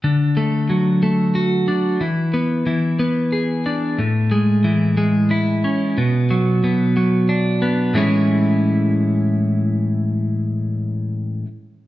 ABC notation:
X:1
M:3/4
L:1/8
Q:1/4=91
K:A
V:1 name="Clean electric guitar" clef=bass
D, A, F, A, F D | E, B, E, B, G D | A,, G, E, G, E C | B,, F, B,, F, D B, |
[A,,E,G,CE]6- | [A,,E,G,CE]6 |]